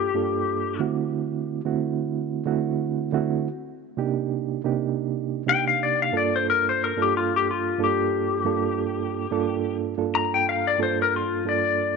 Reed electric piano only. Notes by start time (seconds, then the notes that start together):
Already playing: D4 F4 A4
0.14 G2 A#3 D4 F4 A4
0.79 D3 A3 C4 E4 F#4
1.65 D3 A3 C4 E4 F#4
2.45 D3 A3 C4 E4 F#4
3.13 D3 A3 C4 E4 F#4
3.97 C3 A#3 D4 D#4 G4
4.64 C3 A#3 D4 D#4 G4
5.46 C3 A#3 D4 D#4 G4
6.12 G2 A#3 D4 F4 A4
6.96 G2 A#3 D4 F4 A4
7.78 G2 A#3 D4 F4 A4
8.45 G2 A#3 D4 F4 A4
9.31 G2 A#3 D4 F4 A4
9.97 G2 A#3 D4 F4 A4
10.78 G2 A#3 D4 F4 A4
11.45 G2 A#3 D4 F4 A4